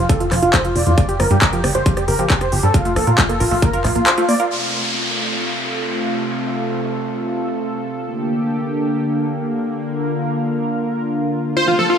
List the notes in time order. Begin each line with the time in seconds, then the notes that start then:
0.09 F4 A4, kick, closed hi-hat
0.20 E3 F4, closed hi-hat
0.32 F1 F3 F4, cross-stick, clap, open hi-hat
0.43 F1 F4, closed hi-hat
0.54 E3 C5, kick, clap, closed hi-hat
0.65 F3 F4, closed hi-hat
0.76 F1 F4 D5, open hi-hat
0.87 F2 E3 F4, closed hi-hat
0.98 G3 D5, kick, closed hi-hat
1.09 G4, closed hi-hat
1.20 G1 F3 A#4, cross-stick, open hi-hat
1.31 G2 G3 G4, closed hi-hat
1.42 G4 A#4, kick, clap, closed hi-hat
1.53 F3 G4, closed hi-hat
1.64 G1 G3 G4, cross-stick, open hi-hat
1.75 G1 G4 C5, closed hi-hat
1.86 F3 G4, kick, closed hi-hat
1.97 G3 G4, cross-stick, closed hi-hat
2.08 G1 G4 A#4, open hi-hat
2.19 G1 F3 G4, closed hi-hat
2.30 G3 G4, kick, clap, closed hi-hat
2.41 G4 C5, cross-stick, closed hi-hat
2.52 G1 F3 G4, open hi-hat
2.63 G2 G3 A4, closed hi-hat
2.74 F4 A#4, kick, closed hi-hat
2.85 A3 F4, closed hi-hat
2.96 A#1 A#3 A4, cross-stick, open hi-hat
3.07 A#2 F4 A#4, closed hi-hat
3.18 A3 F4, kick, clap, closed hi-hat
3.29 A#3 A4, closed hi-hat
3.40 A#1 F4 A#4, open hi-hat
3.51 A#1 A3 F4, open hi-hat
3.62 A#3 A#4, kick, closed hi-hat
3.73 F4 A#4, closed hi-hat
3.84 A#1 A3 F4, cross-stick, clap, open hi-hat
3.95 A#1 A#3 F4, closed hi-hat
4.06 A#4 C5, clap, closed hi-hat
4.18 A3 F4, closed hi-hat
4.29 A#3 D5, open hi-hat
4.40 F4 A#4, closed hi-hat
4.51 C3 A3 F4 A4, downlifter
8.04 D3 A#3 G4
9.80 F4 A#4
11.56 C3 A3 F4 A4 C5
11.68 E3 F4
11.79 F3 A4
11.90 F4